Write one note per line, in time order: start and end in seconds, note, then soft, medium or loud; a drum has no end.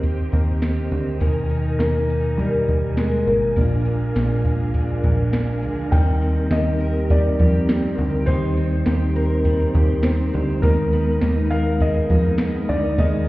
0.00 0.29 D#2 loud
0.00 1.20 D#3 medium
0.00 0.32 A#3 medium
0.00 0.90 C4 medium
0.00 1.18 C4 medium
0.00 1.18 G4 soft
0.00 0.61 G4 medium
0.00 1.18 C5 medium
0.00 3.53 D#5 medium
0.00 kick medium
0.00 closed hi-hat medium
0.32 0.89 D#2 medium
0.32 3.82 A#3 medium
0.32 kick medium
0.32 closed hi-hat soft
0.62 1.27 G4 medium
0.62 snare loud
0.62 closed hi-hat medium
0.91 1.20 D2 medium
0.91 1.27 C4 soft
0.91 closed hi-hat soft
1.20 1.77 D#2 medium
1.20 3.54 B2 medium
1.20 3.56 D#3 medium
1.20 5.88 A#4 medium
1.20 2.39 A#4 medium
1.20 5.88 G#5 medium
1.20 kick medium
1.20 closed hi-hat medium
1.50 2.08 D#4 medium
1.50 closed hi-hat soft
1.79 2.64 D#2 medium
1.79 2.40 A#3 loud
1.79 snare loud
1.79 closed hi-hat medium
2.09 3.26 D#4 medium
2.09 closed hi-hat soft
2.37 2.99 G3 medium
2.37 2.98 A#4 medium
2.37 kick medium
2.37 closed hi-hat medium
2.68 3.25 D#2 medium
2.68 kick medium
2.68 closed hi-hat soft
2.97 3.28 G#3 medium
2.97 3.88 A#4 medium
2.97 snare loud
2.97 closed hi-hat medium
3.27 3.55 G#1 medium
3.27 5.29 A#3 medium
3.27 3.56 D#4 soft
3.27 closed hi-hat soft
3.56 4.13 A#1 medium
3.56 5.92 A#2 medium
3.56 4.73 D4 medium
3.56 5.90 D4 medium
3.56 5.90 F5 medium
3.56 kick medium
3.56 closed hi-hat medium
3.85 4.44 G#3 medium
3.85 closed hi-hat soft
4.15 5.00 A#1 medium
4.15 5.03 F3 medium
4.15 snare medium
4.15 closed hi-hat medium
4.45 5.62 G#3 medium
4.45 kick medium
4.45 closed hi-hat soft
4.74 5.32 D4 medium
4.74 kick medium
4.74 closed hi-hat medium
5.04 5.65 A#1 medium
5.04 5.98 F3 medium
5.04 kick medium
5.04 closed hi-hat soft
5.33 5.98 D4 medium
5.33 snare loud
5.33 closed hi-hat medium
5.62 5.91 D2 medium
5.62 5.98 G#3 soft
5.62 closed hi-hat soft
5.91 6.48 D#2 medium
5.91 8.26 D#3 medium
5.91 10.58 G3 medium
5.91 10.59 C4 medium
5.91 13.29 D#4 medium
5.91 8.25 A#4 medium
5.91 6.53 G5 loud
5.91 kick loud
5.91 crash medium
5.91 ride medium
6.21 7.67 C4 medium
6.21 ride soft
6.51 7.35 D#2 loud
6.51 7.38 G4 medium
6.51 7.06 D#5 medium
6.51 snare loud
6.51 ride medium
6.51 tambourine medium
6.80 9.15 A#4 medium
6.80 ride soft
7.10 9.44 G3 medium
7.10 7.95 D5 medium
7.10 kick medium
7.10 ride medium
7.39 7.96 F2 medium
7.39 7.97 G4 medium
7.39 kick loud
7.39 ride soft
7.68 8.56 C4 medium
7.68 snare loud
7.68 ride medium
7.68 tambourine medium
7.98 8.26 D2 medium
7.98 8.85 G4 medium
7.98 ride soft
8.26 8.84 D#2 loud
8.26 10.63 D#3 medium
8.26 9.99 C5 loud
8.26 10.61 C5 medium
8.26 kick loud
8.26 ride medium
8.57 10.03 C4 medium
8.57 ride soft
8.86 9.71 D#2 loud
8.86 9.73 G4 medium
8.86 snare loud
8.86 ride soft
8.86 tambourine medium
9.15 10.96 A#4 medium
9.15 ride soft
9.45 10.69 G3 medium
9.45 kick medium
9.45 ride medium
9.75 10.31 D#2 medium
9.75 10.32 G4 medium
9.75 kick medium
9.75 ride soft
10.03 10.69 C4 medium
10.03 snare loud
10.03 ride medium
10.03 tambourine medium
10.33 10.62 D2 medium
10.33 10.69 G4 medium
10.33 ride soft
10.62 11.19 D#2 medium
10.62 12.98 D#3 medium
10.62 13.29 G#3 medium
10.62 13.29 B3 medium
10.62 11.53 A#4 medium
10.62 12.96 A#4 medium
10.62 kick loud
10.62 ride medium
10.92 12.38 B3 medium
10.92 ride soft
11.21 12.06 D#2 loud
11.21 12.09 D#4 medium
11.21 snare loud
11.21 ride medium
11.21 tambourine medium
11.51 13.29 A#4 medium
11.51 11.81 F5 loud
11.51 ride soft
11.80 13.29 G#3 medium
11.80 12.72 D#5 medium
11.80 kick medium
11.80 ride medium
12.10 12.66 F2 medium
12.10 12.69 D#4 medium
12.10 kick medium
12.10 ride soft
12.38 13.26 B3 medium
12.38 snare loud
12.38 ride medium
12.38 tambourine medium
12.69 12.97 D2 loud
12.69 13.29 D#4 medium
12.69 12.99 D5 medium
12.69 ride soft
12.98 13.29 D#2 loud
12.98 13.29 D#3 medium
12.98 13.29 G#4 medium
12.98 13.29 D#5 medium
12.98 kick loud
12.98 ride medium